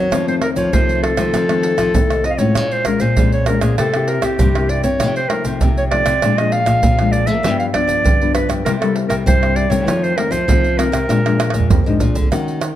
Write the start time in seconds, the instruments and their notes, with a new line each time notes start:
Already playing: nylon-string guitar F#3, clarinet C#5
0.12 nylon-string guitar F2 D#3 F3 A3 C4, pandeiro, tamborim, shaker, surdo
0.27 nylon-string guitar D#3 A3 C4, clarinet C5, pandeiro, shaker
0.42 clarinet A#4, pandeiro, tamborim
0.56 nylon-string guitar F3, clarinet C#5, pandeiro, shaker, surdo
0.72 nylon-string guitar C3 D#3 F3 A3 C4, clarinet C5, pandeiro, shaker, surdo
0.89 pandeiro, shaker
1.03 clarinet A4, pandeiro, tamborim
1.17 nylon-string guitar D#3 F3 A3 C4, pandeiro, tamborim, shaker, surdo
1.33 nylon-string guitar F2 F3, pandeiro, tamborim, shaker, surdo
1.49 nylon-string guitar D#3 A3 C4, pandeiro, tamborim, shaker
1.63 pandeiro
1.78 nylon-string guitar F3, pandeiro, tamborim, shaker, surdo
1.94 nylon-string guitar C2 C3 D#3 A3 C4, pandeiro, shaker, surdo
2.10 nylon-string guitar D#2, pandeiro, tamborim, shaker
2.24 nylon-string guitar F2, clarinet D#5, pandeiro
2.30 clarinet D#5 F5
2.39 nylon-string guitar A2 G#3 C#4 F4, clarinet C#5, pandeiro, shaker, surdo
2.55 nylon-string guitar A#2, pandeiro, tamborim, shaker, surdo
2.71 clarinet C5, pandeiro, shaker
2.85 nylon-string guitar G#3 C#4 F4, clarinet A#4, pandeiro, tamborim, shaker, surdo
3.00 nylon-string guitar A#2, clarinet C5, pandeiro, shaker, surdo
3.17 nylon-string guitar F2 A#2 G#3 C#4 F4, pandeiro, shaker, surdo
3.32 clarinet C#5, pandeiro, shaker
3.46 nylon-string guitar G#3 C#4 F4, clarinet A#4, pandeiro, tamborim, shaker
3.61 nylon-string guitar A#2, clarinet G#4, pandeiro, tamborim, shaker, surdo
3.78 nylon-string guitar C3 A#3 E4 G4, clarinet A4, pandeiro, tamborim, shaker, surdo
3.94 nylon-string guitar A#3 E4 G4, pandeiro, tamborim, shaker
4.08 clarinet A#4, pandeiro
4.22 nylon-string guitar C3, clarinet G4, pandeiro, tamborim, shaker, surdo
4.39 nylon-string guitar G2 C3, pandeiro, shaker, surdo
4.55 nylon-string guitar A#3 E4 G4, pandeiro, tamborim, shaker
4.69 clarinet D5, pandeiro
4.83 nylon-string guitar C4, clarinet C#5, pandeiro, shaker, surdo
5.00 nylon-string guitar C3 F3 A3 D#4, pandeiro, tamborim, shaker, surdo
5.16 clarinet C5, pandeiro, shaker
5.29 nylon-string guitar F3 A3 D#4, clarinet A#4, pandeiro, tamborim
5.45 nylon-string guitar C3, pandeiro, shaker, surdo
5.61 nylon-string guitar C3, pandeiro, shaker, surdo
5.77 clarinet C#5, pandeiro, shaker
5.91 nylon-string guitar F3 A3 D#4, clarinet D5, pandeiro, tamborim
6.06 nylon-string guitar C3, pandeiro, tamborim, shaker, surdo
6.22 nylon-string guitar A#2 F3 G#3 D4, pandeiro, tamborim, shaker, surdo
6.38 nylon-string guitar F3 G#3 D4, clarinet D#5, pandeiro, tamborim, shaker
6.52 clarinet F5, pandeiro
6.66 nylon-string guitar A#2, pandeiro, tamborim, shaker, surdo
6.83 nylon-string guitar F2 A#2, pandeiro, shaker, surdo
6.99 nylon-string guitar F3 G#3 D4, pandeiro, tamborim, shaker
7.12 clarinet D5, pandeiro, shaker
7.26 nylon-string guitar A#3, clarinet E5, pandeiro, shaker, surdo
7.43 nylon-string guitar G2 F3 B3 D4, pandeiro, tamborim, shaker, surdo
7.59 clarinet F5, pandeiro, shaker
7.73 nylon-string guitar F3 B3 D4, clarinet D5, pandeiro, tamborim, surdo
7.87 nylon-string guitar G2, pandeiro, shaker, surdo
8.04 nylon-string guitar G2 D3, pandeiro, shaker, surdo
8.21 nylon-string guitar F3 B3 D4, pandeiro, shaker
8.34 clarinet B4, pandeiro, tamborim, shaker
8.49 nylon-string guitar G2, pandeiro, tamborim, shaker, surdo
8.65 nylon-string guitar C3 G3 A#3 E4, clarinet A#4, pandeiro, tamborim, shaker, surdo
8.81 nylon-string guitar G3 A#3 E4, clarinet A4, pandeiro, tamborim, shaker
8.96 pandeiro
9.09 nylon-string guitar C3, clarinet A#4, pandeiro, tamborim, shaker, surdo
9.26 nylon-string guitar G2 C3 G3 A#3 E4, clarinet C5, pandeiro, shaker, surdo
9.43 pandeiro, tamborim, shaker
9.56 clarinet D5, pandeiro
9.70 nylon-string guitar C3 D#3 A3, clarinet C#5, pandeiro, shaker, surdo
9.87 nylon-string guitar F2 F3, pandeiro, tamborim, shaker, surdo
10.03 clarinet C5, pandeiro, shaker
10.17 nylon-string guitar D#3 A3 C4, clarinet A#4, pandeiro, tamborim
10.31 nylon-string guitar F3, clarinet C5, pandeiro, shaker, surdo
10.48 nylon-string guitar C3 D#3 F3 A3 C4, pandeiro, shaker, surdo
10.64 pandeiro, shaker
10.78 nylon-string guitar D#3 A3 C4, clarinet A#4, pandeiro, tamborim, shaker
10.92 nylon-string guitar C3, pandeiro, tamborim, shaker, surdo
11.08 nylon-string guitar A#2 F3 G#3 D4, pandeiro, tamborim, shaker, surdo
11.25 nylon-string guitar F3 G#3 D4, pandeiro, tamborim, shaker
11.40 pandeiro, tamborim, shaker
11.50 nylon-string guitar A#2, pandeiro, tamborim, shaker, surdo
11.60 surdo
11.70 nylon-string guitar F2, surdo, pandeiro, shaker
11.81 surdo
11.86 nylon-string guitar G#2 F3 G#3 D4, pandeiro, shaker
12.00 nylon-string guitar A#2, pandeiro, shaker, surdo
12.15 nylon-string guitar D3, pandeiro, shaker, surdo
12.22 surdo
12.32 nylon-string guitar D#3 A#3 C#4 F#4, pandeiro, tamborim, shaker, surdo
12.48 pandeiro, shaker
12.61 pandeiro, tamborim, shaker